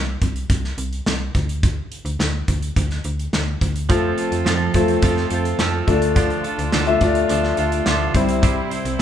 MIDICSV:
0, 0, Header, 1, 6, 480
1, 0, Start_track
1, 0, Tempo, 566572
1, 1382, Time_signature, 4, 2, 24, 8
1, 7641, End_track
2, 0, Start_track
2, 0, Title_t, "Grand piano"
2, 0, Program_c, 0, 0
2, 3300, Note_on_c, 0, 57, 69
2, 3303, Note_on_c, 0, 65, 65
2, 3307, Note_on_c, 0, 72, 80
2, 3444, Control_c, 0, 64, 127
2, 3957, Note_off_c, 0, 57, 0
2, 3958, Note_off_c, 0, 65, 0
2, 3960, Note_off_c, 0, 72, 0
2, 4023, Note_on_c, 0, 57, 74
2, 4026, Note_on_c, 0, 65, 70
2, 4029, Note_on_c, 0, 72, 84
2, 4897, Note_off_c, 0, 57, 0
2, 4898, Note_off_c, 0, 65, 0
2, 4900, Note_off_c, 0, 72, 0
2, 4974, Note_on_c, 0, 57, 73
2, 4979, Note_on_c, 0, 50, 57
2, 4979, Note_on_c, 0, 65, 64
2, 4982, Note_on_c, 0, 74, 75
2, 4994, Control_c, 0, 64, 0
2, 5135, Control_c, 0, 64, 127
2, 5666, Note_off_c, 0, 50, 0
2, 5743, Note_off_c, 0, 57, 0
2, 5745, Note_off_c, 0, 65, 0
2, 5747, Note_off_c, 0, 74, 0
2, 5817, Note_on_c, 0, 57, 71
2, 5823, Note_on_c, 0, 65, 66
2, 5823, Note_on_c, 0, 76, 84
2, 5928, Note_off_c, 0, 57, 0
2, 5930, Note_off_c, 0, 65, 0
2, 5931, Note_off_c, 0, 76, 0
2, 5941, Note_on_c, 0, 57, 75
2, 5943, Note_on_c, 0, 65, 69
2, 5943, Note_on_c, 0, 74, 88
2, 6664, Note_on_c, 0, 84, 70
2, 6815, Note_off_c, 0, 57, 0
2, 6816, Note_off_c, 0, 65, 0
2, 6817, Note_off_c, 0, 74, 0
2, 6905, Note_on_c, 0, 55, 73
2, 6907, Note_on_c, 0, 48, 61
2, 6908, Note_on_c, 0, 64, 72
2, 6911, Control_c, 0, 64, 0
2, 6911, Note_on_c, 0, 72, 80
2, 7062, Control_c, 0, 64, 127
2, 7109, Note_off_c, 0, 84, 0
2, 7590, Note_off_c, 0, 48, 0
2, 7641, Note_off_c, 0, 55, 0
2, 7641, Note_off_c, 0, 64, 0
2, 7641, Note_off_c, 0, 72, 0
2, 7641, End_track
3, 0, Start_track
3, 0, Title_t, "Clean electric guitar"
3, 0, Program_c, 1, 27
3, 3297, Note_on_c, 1, 53, 76
3, 3304, Note_on_c, 1, 60, 77
3, 3308, Note_on_c, 1, 65, 77
3, 3314, Note_on_c, 1, 69, 79
3, 3528, Note_off_c, 1, 69, 0
3, 3538, Note_off_c, 1, 65, 0
3, 3538, Note_on_c, 1, 69, 50
3, 3539, Note_off_c, 1, 53, 0
3, 3543, Note_off_c, 1, 60, 0
3, 3549, Note_on_c, 1, 65, 43
3, 3563, Note_on_c, 1, 60, 42
3, 3769, Note_off_c, 1, 60, 0
3, 3771, Note_on_c, 1, 53, 65
3, 3775, Note_off_c, 1, 65, 0
3, 3779, Note_on_c, 1, 60, 63
3, 3780, Note_off_c, 1, 69, 0
3, 3785, Note_on_c, 1, 65, 75
3, 3789, Note_on_c, 1, 69, 80
3, 4002, Note_off_c, 1, 69, 0
3, 4012, Note_on_c, 1, 69, 52
3, 4015, Note_off_c, 1, 65, 0
3, 4016, Note_off_c, 1, 53, 0
3, 4020, Note_off_c, 1, 60, 0
3, 4026, Note_on_c, 1, 65, 43
3, 4036, Note_on_c, 1, 60, 44
3, 4251, Note_off_c, 1, 60, 0
3, 4253, Note_on_c, 1, 53, 58
3, 4257, Note_off_c, 1, 69, 0
3, 4259, Note_off_c, 1, 65, 0
3, 4261, Note_on_c, 1, 60, 59
3, 4269, Note_on_c, 1, 65, 58
3, 4275, Note_on_c, 1, 69, 66
3, 4486, Note_off_c, 1, 69, 0
3, 4496, Note_on_c, 1, 69, 53
3, 4497, Note_off_c, 1, 53, 0
3, 4501, Note_off_c, 1, 60, 0
3, 4501, Note_off_c, 1, 65, 0
3, 4511, Note_on_c, 1, 65, 46
3, 4522, Note_on_c, 1, 60, 47
3, 4734, Note_off_c, 1, 60, 0
3, 4737, Note_on_c, 1, 53, 69
3, 4739, Note_off_c, 1, 69, 0
3, 4740, Note_off_c, 1, 65, 0
3, 4744, Note_on_c, 1, 60, 79
3, 4750, Note_on_c, 1, 65, 75
3, 4754, Note_on_c, 1, 69, 74
3, 4965, Note_off_c, 1, 69, 0
3, 4975, Note_on_c, 1, 69, 49
3, 4978, Note_off_c, 1, 65, 0
3, 4979, Note_off_c, 1, 53, 0
3, 4983, Note_off_c, 1, 60, 0
3, 4988, Note_on_c, 1, 65, 41
3, 5000, Note_on_c, 1, 62, 39
3, 5214, Note_on_c, 1, 50, 78
3, 5215, Note_off_c, 1, 62, 0
3, 5217, Note_off_c, 1, 65, 0
3, 5218, Note_off_c, 1, 69, 0
3, 5221, Note_on_c, 1, 53, 74
3, 5225, Note_on_c, 1, 62, 80
3, 5227, Note_on_c, 1, 65, 77
3, 5232, Note_on_c, 1, 69, 78
3, 5443, Note_off_c, 1, 69, 0
3, 5453, Note_on_c, 1, 69, 49
3, 5456, Note_off_c, 1, 65, 0
3, 5458, Note_off_c, 1, 50, 0
3, 5461, Note_off_c, 1, 53, 0
3, 5463, Note_off_c, 1, 62, 0
3, 5466, Note_on_c, 1, 65, 47
3, 5478, Note_on_c, 1, 62, 42
3, 5696, Note_on_c, 1, 50, 70
3, 5697, Note_off_c, 1, 62, 0
3, 5697, Note_off_c, 1, 69, 0
3, 5700, Note_off_c, 1, 65, 0
3, 5703, Note_on_c, 1, 53, 75
3, 5708, Note_on_c, 1, 62, 80
3, 5710, Note_on_c, 1, 65, 81
3, 5715, Note_on_c, 1, 69, 83
3, 5930, Note_off_c, 1, 69, 0
3, 5939, Note_off_c, 1, 50, 0
3, 5940, Note_on_c, 1, 69, 54
3, 5942, Note_off_c, 1, 53, 0
3, 5943, Note_off_c, 1, 65, 0
3, 5944, Note_off_c, 1, 62, 0
3, 5953, Note_on_c, 1, 65, 47
3, 5964, Note_on_c, 1, 62, 43
3, 6174, Note_on_c, 1, 53, 60
3, 6175, Note_off_c, 1, 62, 0
3, 6181, Note_off_c, 1, 69, 0
3, 6182, Note_off_c, 1, 65, 0
3, 6185, Note_on_c, 1, 62, 63
3, 6192, Note_on_c, 1, 65, 66
3, 6200, Note_on_c, 1, 69, 64
3, 6405, Note_off_c, 1, 69, 0
3, 6415, Note_on_c, 1, 69, 53
3, 6418, Note_off_c, 1, 53, 0
3, 6418, Note_off_c, 1, 65, 0
3, 6423, Note_off_c, 1, 62, 0
3, 6428, Note_on_c, 1, 65, 52
3, 6439, Note_on_c, 1, 62, 41
3, 6656, Note_off_c, 1, 62, 0
3, 6658, Note_off_c, 1, 69, 0
3, 6659, Note_on_c, 1, 50, 77
3, 6661, Note_off_c, 1, 65, 0
3, 6663, Note_on_c, 1, 53, 68
3, 6666, Note_on_c, 1, 62, 78
3, 6672, Note_on_c, 1, 65, 75
3, 6675, Note_on_c, 1, 69, 84
3, 6891, Note_off_c, 1, 69, 0
3, 6895, Note_on_c, 1, 72, 53
3, 6900, Note_off_c, 1, 50, 0
3, 6902, Note_off_c, 1, 53, 0
3, 6904, Note_off_c, 1, 62, 0
3, 6904, Note_off_c, 1, 65, 0
3, 6907, Note_on_c, 1, 64, 47
3, 6917, Note_on_c, 1, 60, 43
3, 7133, Note_off_c, 1, 60, 0
3, 7134, Note_on_c, 1, 48, 73
3, 7137, Note_on_c, 1, 55, 75
3, 7138, Note_off_c, 1, 64, 0
3, 7138, Note_off_c, 1, 72, 0
3, 7143, Note_on_c, 1, 60, 77
3, 7149, Note_on_c, 1, 64, 77
3, 7150, Note_on_c, 1, 72, 81
3, 7364, Note_off_c, 1, 72, 0
3, 7374, Note_on_c, 1, 72, 53
3, 7377, Note_off_c, 1, 64, 0
3, 7378, Note_off_c, 1, 48, 0
3, 7379, Note_off_c, 1, 55, 0
3, 7382, Note_off_c, 1, 60, 0
3, 7387, Note_on_c, 1, 64, 43
3, 7398, Note_on_c, 1, 60, 43
3, 7616, Note_off_c, 1, 60, 0
3, 7618, Note_off_c, 1, 72, 0
3, 7619, Note_off_c, 1, 64, 0
3, 7641, End_track
4, 0, Start_track
4, 0, Title_t, "String section"
4, 0, Program_c, 2, 48
4, 3300, Note_on_c, 2, 53, 68
4, 3303, Note_on_c, 2, 60, 57
4, 3304, Note_on_c, 2, 69, 75
4, 4964, Note_off_c, 2, 53, 0
4, 4965, Note_off_c, 2, 60, 0
4, 4966, Note_off_c, 2, 69, 0
4, 4987, Note_on_c, 2, 50, 61
4, 4991, Note_on_c, 2, 65, 71
4, 4992, Note_on_c, 2, 57, 58
4, 6885, Note_off_c, 2, 50, 0
4, 6887, Note_off_c, 2, 57, 0
4, 6887, Note_off_c, 2, 65, 0
4, 6918, Note_on_c, 2, 55, 59
4, 6919, Note_on_c, 2, 64, 76
4, 6921, Note_on_c, 2, 48, 63
4, 7641, Note_off_c, 2, 48, 0
4, 7641, Note_off_c, 2, 55, 0
4, 7641, Note_off_c, 2, 64, 0
4, 7641, End_track
5, 0, Start_track
5, 0, Title_t, "FM bass"
5, 0, Program_c, 3, 39
5, 0, Note_on_c, 3, 36, 92
5, 140, Note_off_c, 3, 36, 0
5, 185, Note_on_c, 3, 36, 90
5, 381, Note_off_c, 3, 36, 0
5, 421, Note_on_c, 3, 36, 91
5, 618, Note_off_c, 3, 36, 0
5, 659, Note_on_c, 3, 36, 84
5, 857, Note_off_c, 3, 36, 0
5, 902, Note_on_c, 3, 36, 97
5, 1098, Note_off_c, 3, 36, 0
5, 1145, Note_on_c, 3, 38, 93
5, 1537, Note_off_c, 3, 38, 0
5, 1736, Note_on_c, 3, 38, 86
5, 1837, Note_off_c, 3, 38, 0
5, 1858, Note_on_c, 3, 38, 99
5, 2056, Note_off_c, 3, 38, 0
5, 2104, Note_on_c, 3, 38, 86
5, 2300, Note_off_c, 3, 38, 0
5, 2343, Note_on_c, 3, 38, 99
5, 2539, Note_off_c, 3, 38, 0
5, 2582, Note_on_c, 3, 38, 85
5, 2779, Note_off_c, 3, 38, 0
5, 2821, Note_on_c, 3, 38, 105
5, 3018, Note_off_c, 3, 38, 0
5, 3062, Note_on_c, 3, 38, 98
5, 3302, Note_on_c, 3, 41, 94
5, 3315, Note_off_c, 3, 38, 0
5, 3499, Note_off_c, 3, 41, 0
5, 3658, Note_on_c, 3, 41, 91
5, 3758, Note_off_c, 3, 41, 0
5, 3776, Note_on_c, 3, 41, 93
5, 3975, Note_off_c, 3, 41, 0
5, 4019, Note_on_c, 3, 40, 81
5, 4217, Note_off_c, 3, 40, 0
5, 4258, Note_on_c, 3, 41, 96
5, 4456, Note_off_c, 3, 41, 0
5, 4496, Note_on_c, 3, 41, 82
5, 4695, Note_off_c, 3, 41, 0
5, 4735, Note_on_c, 3, 41, 92
5, 4934, Note_off_c, 3, 41, 0
5, 4980, Note_on_c, 3, 38, 90
5, 5374, Note_off_c, 3, 38, 0
5, 5578, Note_on_c, 3, 38, 95
5, 5678, Note_off_c, 3, 38, 0
5, 5705, Note_on_c, 3, 38, 100
5, 5900, Note_off_c, 3, 38, 0
5, 5942, Note_on_c, 3, 38, 89
5, 6138, Note_off_c, 3, 38, 0
5, 6185, Note_on_c, 3, 38, 102
5, 6380, Note_off_c, 3, 38, 0
5, 6424, Note_on_c, 3, 38, 86
5, 6620, Note_off_c, 3, 38, 0
5, 6662, Note_on_c, 3, 38, 89
5, 6858, Note_off_c, 3, 38, 0
5, 6901, Note_on_c, 3, 36, 90
5, 7295, Note_off_c, 3, 36, 0
5, 7500, Note_on_c, 3, 36, 93
5, 7599, Note_off_c, 3, 36, 0
5, 7641, End_track
6, 0, Start_track
6, 0, Title_t, "Drums"
6, 183, Note_on_c, 9, 36, 72
6, 183, Note_on_c, 9, 42, 64
6, 268, Note_off_c, 9, 36, 0
6, 268, Note_off_c, 9, 42, 0
6, 304, Note_on_c, 9, 42, 45
6, 388, Note_off_c, 9, 42, 0
6, 421, Note_on_c, 9, 36, 86
6, 423, Note_on_c, 9, 42, 80
6, 506, Note_off_c, 9, 36, 0
6, 507, Note_off_c, 9, 42, 0
6, 544, Note_on_c, 9, 38, 27
6, 629, Note_off_c, 9, 38, 0
6, 660, Note_on_c, 9, 42, 60
6, 745, Note_off_c, 9, 42, 0
6, 785, Note_on_c, 9, 42, 44
6, 869, Note_off_c, 9, 42, 0
6, 902, Note_on_c, 9, 38, 94
6, 910, Note_on_c, 9, 39, 69
6, 986, Note_off_c, 9, 38, 0
6, 994, Note_off_c, 9, 39, 0
6, 1142, Note_on_c, 9, 36, 76
6, 1144, Note_on_c, 9, 42, 55
6, 1227, Note_off_c, 9, 36, 0
6, 1229, Note_off_c, 9, 42, 0
6, 1264, Note_on_c, 9, 42, 53
6, 1349, Note_off_c, 9, 42, 0
6, 1383, Note_on_c, 9, 36, 98
6, 1385, Note_on_c, 9, 42, 80
6, 1468, Note_off_c, 9, 36, 0
6, 1470, Note_off_c, 9, 42, 0
6, 1623, Note_on_c, 9, 42, 55
6, 1708, Note_off_c, 9, 42, 0
6, 1742, Note_on_c, 9, 42, 50
6, 1827, Note_off_c, 9, 42, 0
6, 1863, Note_on_c, 9, 38, 90
6, 1871, Note_on_c, 9, 39, 70
6, 1948, Note_off_c, 9, 38, 0
6, 1956, Note_off_c, 9, 39, 0
6, 2102, Note_on_c, 9, 42, 66
6, 2103, Note_on_c, 9, 36, 72
6, 2187, Note_off_c, 9, 42, 0
6, 2188, Note_off_c, 9, 36, 0
6, 2223, Note_on_c, 9, 42, 47
6, 2308, Note_off_c, 9, 42, 0
6, 2342, Note_on_c, 9, 36, 82
6, 2344, Note_on_c, 9, 42, 80
6, 2427, Note_off_c, 9, 36, 0
6, 2428, Note_off_c, 9, 42, 0
6, 2461, Note_on_c, 9, 38, 27
6, 2464, Note_on_c, 9, 42, 28
6, 2546, Note_off_c, 9, 38, 0
6, 2548, Note_off_c, 9, 42, 0
6, 2578, Note_on_c, 9, 42, 61
6, 2663, Note_off_c, 9, 42, 0
6, 2706, Note_on_c, 9, 42, 45
6, 2791, Note_off_c, 9, 42, 0
6, 2822, Note_on_c, 9, 38, 94
6, 2830, Note_on_c, 9, 39, 76
6, 2907, Note_off_c, 9, 38, 0
6, 2915, Note_off_c, 9, 39, 0
6, 3062, Note_on_c, 9, 36, 73
6, 3063, Note_on_c, 9, 42, 56
6, 3146, Note_off_c, 9, 36, 0
6, 3148, Note_off_c, 9, 42, 0
6, 3183, Note_on_c, 9, 42, 52
6, 3267, Note_off_c, 9, 42, 0
6, 3300, Note_on_c, 9, 42, 84
6, 3301, Note_on_c, 9, 36, 100
6, 3385, Note_off_c, 9, 42, 0
6, 3386, Note_off_c, 9, 36, 0
6, 3539, Note_on_c, 9, 42, 58
6, 3623, Note_off_c, 9, 42, 0
6, 3660, Note_on_c, 9, 42, 50
6, 3745, Note_off_c, 9, 42, 0
6, 3780, Note_on_c, 9, 38, 96
6, 3788, Note_on_c, 9, 39, 75
6, 3864, Note_off_c, 9, 38, 0
6, 3873, Note_off_c, 9, 39, 0
6, 4016, Note_on_c, 9, 42, 72
6, 4020, Note_on_c, 9, 36, 72
6, 4101, Note_off_c, 9, 42, 0
6, 4104, Note_off_c, 9, 36, 0
6, 4136, Note_on_c, 9, 42, 48
6, 4221, Note_off_c, 9, 42, 0
6, 4256, Note_on_c, 9, 42, 81
6, 4258, Note_on_c, 9, 36, 90
6, 4341, Note_off_c, 9, 42, 0
6, 4343, Note_off_c, 9, 36, 0
6, 4377, Note_on_c, 9, 38, 26
6, 4462, Note_off_c, 9, 38, 0
6, 4494, Note_on_c, 9, 42, 58
6, 4579, Note_off_c, 9, 42, 0
6, 4620, Note_on_c, 9, 42, 48
6, 4704, Note_off_c, 9, 42, 0
6, 4735, Note_on_c, 9, 38, 89
6, 4743, Note_on_c, 9, 39, 80
6, 4819, Note_off_c, 9, 38, 0
6, 4827, Note_off_c, 9, 39, 0
6, 4979, Note_on_c, 9, 36, 79
6, 4979, Note_on_c, 9, 42, 56
6, 5063, Note_off_c, 9, 42, 0
6, 5064, Note_off_c, 9, 36, 0
6, 5099, Note_on_c, 9, 42, 56
6, 5184, Note_off_c, 9, 42, 0
6, 5218, Note_on_c, 9, 42, 82
6, 5219, Note_on_c, 9, 36, 94
6, 5303, Note_off_c, 9, 42, 0
6, 5304, Note_off_c, 9, 36, 0
6, 5340, Note_on_c, 9, 42, 32
6, 5425, Note_off_c, 9, 42, 0
6, 5459, Note_on_c, 9, 42, 55
6, 5543, Note_off_c, 9, 42, 0
6, 5582, Note_on_c, 9, 42, 49
6, 5666, Note_off_c, 9, 42, 0
6, 5697, Note_on_c, 9, 38, 97
6, 5705, Note_on_c, 9, 39, 73
6, 5782, Note_off_c, 9, 38, 0
6, 5790, Note_off_c, 9, 39, 0
6, 5817, Note_on_c, 9, 42, 28
6, 5902, Note_off_c, 9, 42, 0
6, 5938, Note_on_c, 9, 42, 71
6, 5940, Note_on_c, 9, 36, 79
6, 6022, Note_off_c, 9, 42, 0
6, 6025, Note_off_c, 9, 36, 0
6, 6058, Note_on_c, 9, 42, 49
6, 6143, Note_off_c, 9, 42, 0
6, 6180, Note_on_c, 9, 42, 85
6, 6264, Note_off_c, 9, 42, 0
6, 6299, Note_on_c, 9, 38, 27
6, 6383, Note_off_c, 9, 38, 0
6, 6415, Note_on_c, 9, 42, 62
6, 6500, Note_off_c, 9, 42, 0
6, 6541, Note_on_c, 9, 42, 51
6, 6625, Note_off_c, 9, 42, 0
6, 6658, Note_on_c, 9, 38, 99
6, 6666, Note_on_c, 9, 39, 80
6, 6743, Note_off_c, 9, 38, 0
6, 6751, Note_off_c, 9, 39, 0
6, 6901, Note_on_c, 9, 36, 80
6, 6904, Note_on_c, 9, 42, 59
6, 6985, Note_off_c, 9, 36, 0
6, 6988, Note_off_c, 9, 42, 0
6, 7020, Note_on_c, 9, 42, 53
6, 7105, Note_off_c, 9, 42, 0
6, 7142, Note_on_c, 9, 36, 105
6, 7144, Note_on_c, 9, 42, 82
6, 7227, Note_off_c, 9, 36, 0
6, 7228, Note_off_c, 9, 42, 0
6, 7383, Note_on_c, 9, 42, 57
6, 7467, Note_off_c, 9, 42, 0
6, 7501, Note_on_c, 9, 42, 49
6, 7586, Note_off_c, 9, 42, 0
6, 7641, End_track
0, 0, End_of_file